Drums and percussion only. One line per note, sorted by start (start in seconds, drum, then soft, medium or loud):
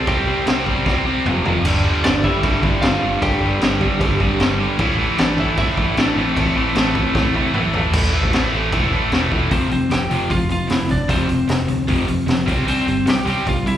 0.07 kick loud
0.07 crash medium
0.47 snare loud
0.47 crash medium
0.66 kick medium
0.86 kick loud
0.86 snare medium
1.26 mid tom loud
1.45 floor tom loud
1.65 crash loud
1.65 crash medium
2.04 snare loud
2.04 crash medium
2.24 kick medium
2.43 kick loud
2.43 crash medium
2.63 kick medium
2.82 snare loud
2.82 crash medium
3.22 kick loud
3.22 crash medium
3.61 snare loud
3.61 crash medium
3.81 kick medium
4.01 kick loud
4.01 crash medium
4.20 kick medium
4.40 snare loud
4.40 crash medium
4.79 kick loud
4.79 crash medium
5.18 snare loud
5.18 crash medium
5.38 kick medium
5.57 kick loud
5.57 crash medium
5.78 kick medium
5.97 snare loud
5.97 crash medium
6.37 kick loud
6.37 crash medium
6.75 snare loud
6.75 crash medium
6.95 kick loud
7.15 kick loud
7.15 snare medium
7.34 high tom medium
7.54 mid tom loud
7.74 floor tom loud
7.93 kick loud
7.93 crash loud
7.93 crash medium
8.23 kick medium
8.33 snare loud
8.33 crash medium
8.72 kick loud
8.72 crash medium
9.12 snare loud
9.12 crash medium
9.32 kick loud
9.51 kick loud
9.51 open hi-hat medium
9.71 open hi-hat medium
9.91 snare loud
9.91 open hi-hat medium
10.11 open hi-hat medium
10.30 kick loud
10.30 open hi-hat medium
10.50 open hi-hat medium
10.69 snare loud
10.69 open hi-hat medium
10.89 kick medium
10.89 open hi-hat medium
11.09 kick loud
11.09 open hi-hat medium
11.29 open hi-hat medium
11.49 snare loud
11.49 open hi-hat medium
11.68 open hi-hat medium
11.88 kick loud
11.88 open hi-hat medium
12.08 open hi-hat medium
12.28 snare loud
12.28 open hi-hat medium
12.48 kick loud
12.48 open hi-hat medium
12.68 open hi-hat medium
12.88 open hi-hat soft
13.07 snare loud
13.07 open hi-hat medium
13.27 open hi-hat medium
13.47 kick loud
13.47 open hi-hat medium
13.67 open hi-hat medium